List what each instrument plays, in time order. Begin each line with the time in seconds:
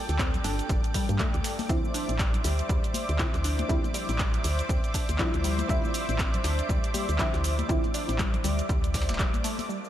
Already playing: synth stab G3 A#3 F4 A4, analog synth pad A4 D5 G5 D6
0.09 fm bass D2, snare, closed hi-hat, cabasa
0.19 synth arpeggio sound C4, kick, snare, clap, closed hi-hat, cabasa
0.34 closed hi-hat, low conga, cabasa
0.44 fm bass G1, synth arpeggio sound D4, snare, closed hi-hat, open hi-hat, cabasa
0.59 closed hi-hat, cabasa
0.69 fm bass G1, synth arpeggio sound G3, kick, closed hi-hat, cabasa
0.84 closed hi-hat, cabasa
0.94 synth arpeggio sound G3, kick, closed hi-hat, open hi-hat, cabasa
1.09 fm bass G2, synth arpeggio sound G2, closed hi-hat, high conga, cabasa
1.19 synth arpeggio sound A3, kick, snare, clap, closed hi-hat, cabasa
1.34 fm bass D2, closed hi-hat, high conga, cabasa
1.44 snare, closed hi-hat, open hi-hat, cabasa
1.59 open hi-hat, high conga, cabasa
1.69 fm bass D2, synth stab D3 F3 C4 E4, synth arpeggio sound C4, analog synth pad C5 D5 E5 D6, kick, closed hi-hat, cabasa
1.84 high conga, cabasa
1.94 synth arpeggio sound D4, closed hi-hat, open hi-hat, cabasa
2.09 fm bass A1, closed hi-hat, cabasa
2.19 synth arpeggio sound G3, kick, snare, clap, closed hi-hat, cabasa
2.34 closed hi-hat, low conga, cabasa
2.44 fm bass D2, synth arpeggio sound G3, closed hi-hat, open hi-hat, cabasa
2.59 closed hi-hat, cabasa
2.69 fm bass D2, synth arpeggio sound G3, kick, closed hi-hat, cabasa
2.84 closed hi-hat, cabasa
2.94 closed hi-hat, open hi-hat, high conga, cabasa
3.09 fm bass D2, closed hi-hat, cabasa
3.19 synth stab D3 F3 C4 E4, synth arpeggio sound C4, kick, snare, clap, closed hi-hat, cabasa
3.34 fm bass D2, snare, closed hi-hat, cabasa
3.44 synth arpeggio sound D4, closed hi-hat, open hi-hat, cabasa
3.59 closed hi-hat, high conga, cabasa
3.69 fm bass D2, synth stab D3 F3 C4 E4, synth arpeggio sound G3, kick, closed hi-hat, cabasa
3.84 closed hi-hat, high conga, cabasa
3.94 synth arpeggio sound G3, closed hi-hat, open hi-hat, cabasa
4.09 fm bass A1, snare, closed hi-hat, cabasa
4.19 synth arpeggio sound G3, kick, snare, clap, closed hi-hat, cabasa
4.34 closed hi-hat, low conga, cabasa
4.44 fm bass D2, snare, closed hi-hat, open hi-hat, cabasa
4.59 closed hi-hat, cabasa
4.69 fm bass D2, synth arpeggio sound C4, kick, closed hi-hat, cabasa
4.84 closed hi-hat, cabasa
4.94 synth arpeggio sound D4, kick, closed hi-hat, open hi-hat, cabasa
5.09 fm bass D2, closed hi-hat, high conga, cabasa
5.19 synth stab D3 F3 C4 E4, synth arpeggio sound G3, kick, snare, clap, closed hi-hat, cabasa
5.34 fm bass D2, closed hi-hat, high conga, cabasa
5.44 synth arpeggio sound G3, closed hi-hat, open hi-hat, cabasa
5.59 closed hi-hat, high conga, cabasa
5.69 fm bass D2, synth stab D3 F3 C4 E4, synth arpeggio sound G3, kick, closed hi-hat, cabasa
5.84 high conga, cabasa
5.94 closed hi-hat, open hi-hat, cabasa
6.09 fm bass A1, closed hi-hat, cabasa
6.19 synth arpeggio sound C4, kick, snare, clap, closed hi-hat, cabasa
6.34 closed hi-hat, low conga, cabasa
6.44 fm bass D2, synth arpeggio sound D4, snare, closed hi-hat, open hi-hat, cabasa
6.59 closed hi-hat, cabasa
6.69 fm bass D2, synth arpeggio sound G3, kick, closed hi-hat, cabasa
6.84 closed hi-hat, cabasa
6.94 synth arpeggio sound G3, closed hi-hat, open hi-hat, high conga, cabasa
7.09 fm bass D2, closed hi-hat, cabasa
7.19 synth stab D3 F3 C4 E4, synth arpeggio sound G3, kick, snare, clap, closed hi-hat, cabasa
7.34 fm bass D2, snare, closed hi-hat, cabasa
7.44 closed hi-hat, open hi-hat, cabasa
7.59 closed hi-hat, high conga, cabasa
7.69 fm bass D2, synth stab D3 F3 C4 E4, synth arpeggio sound C4, kick, closed hi-hat, cabasa
7.84 closed hi-hat, high conga, cabasa
7.94 synth arpeggio sound D4, closed hi-hat, open hi-hat, cabasa
8.09 fm bass A1, snare, closed hi-hat, cabasa
8.19 synth arpeggio sound G3, kick, snare, clap, closed hi-hat, cabasa
8.34 closed hi-hat, low conga, cabasa
8.44 fm bass D2, synth arpeggio sound G3, closed hi-hat, open hi-hat, cabasa
8.59 closed hi-hat, cabasa
8.69 fm bass D2, synth arpeggio sound G3, kick, closed hi-hat, cabasa
8.84 closed hi-hat, cabasa
8.94 kick, snare, closed hi-hat, open hi-hat, cabasa
9.02 snare, closed hi-hat
9.09 fm bass D1, snare, closed hi-hat, high conga, cabasa
9.14 snare, closed hi-hat
9.19 synth arpeggio sound G3, kick, snare, clap, closed hi-hat, cabasa
9.34 fm bass A1, closed hi-hat, high conga, cabasa
9.44 synth arpeggio sound A3, closed hi-hat, open hi-hat, cabasa
9.59 open hi-hat, high conga, cabasa
9.69 synth arpeggio sound G3, analog synth pad G4 A#4 D5 F5 A5 D6, closed hi-hat, cabasa
9.85 cabasa